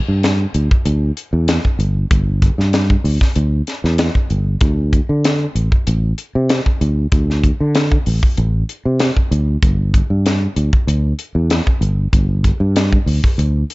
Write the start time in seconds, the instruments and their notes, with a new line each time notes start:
0.08 fretless electric bass G2
0.23 snare, closed hi-hat
0.54 fretless electric bass D2, closed hi-hat
0.71 kick
0.85 fretless electric bass D2, closed hi-hat
1.17 closed hi-hat
1.33 fretless electric bass E2
1.48 snare, closed hi-hat
1.65 kick
1.79 fretless electric bass G1, closed hi-hat
2.11 fretless electric bass G1, kick, closed hi-hat
2.42 kick, closed hi-hat
2.58 fretless electric bass G2, snare
2.73 snare, closed hi-hat
2.90 kick
3.04 fretless electric bass D2, open hi-hat
3.21 kick, snare
3.36 fretless electric bass D2, closed hi-hat
3.67 snare, closed hi-hat
3.84 fretless electric bass E2, snare
3.98 snare, closed hi-hat
4.15 muted fretless electric bass stroke, kick
4.30 fretless electric bass G1, closed hi-hat
4.61 fretless electric bass D2, kick, closed hi-hat
4.93 kick, closed hi-hat
5.09 fretless electric bass D3
5.24 snare, closed hi-hat
5.55 fretless electric bass A1, closed hi-hat
5.72 muted fretless electric bass stroke, kick
5.87 fretless electric bass A1, closed hi-hat
6.18 closed hi-hat
6.35 fretless electric bass C3
6.49 snare, closed hi-hat
6.66 muted fretless electric bass stroke, kick
6.81 fretless electric bass D2, closed hi-hat
7.12 fretless electric bass D2, kick, closed hi-hat
7.30 snare
7.44 kick, closed hi-hat
7.60 fretless electric bass D3
7.75 snare, closed hi-hat
7.92 kick
8.06 fretless electric bass A1, open hi-hat
8.23 kick
8.37 fretless electric bass A1, closed hi-hat
8.69 closed hi-hat
8.85 fretless electric bass C3
8.99 snare, closed hi-hat
9.17 muted fretless electric bass stroke, kick
9.31 fretless electric bass D2, closed hi-hat
9.63 fretless electric bass G1, kick, closed hi-hat
9.94 kick, closed hi-hat
10.10 fretless electric bass G2
10.26 snare, closed hi-hat
10.56 fretless electric bass D2, closed hi-hat
10.73 kick
10.87 fretless electric bass D2, closed hi-hat
11.19 closed hi-hat
11.35 fretless electric bass E2
11.50 snare, closed hi-hat
11.67 muted fretless electric bass stroke, kick
11.81 fretless electric bass G1, closed hi-hat
12.13 fretless electric bass G1, kick, closed hi-hat
12.44 kick, closed hi-hat
12.60 fretless electric bass G2
12.76 snare, closed hi-hat
12.93 kick
13.06 fretless electric bass D2, open hi-hat
13.24 kick
13.38 fretless electric bass D2, closed hi-hat
13.70 closed hi-hat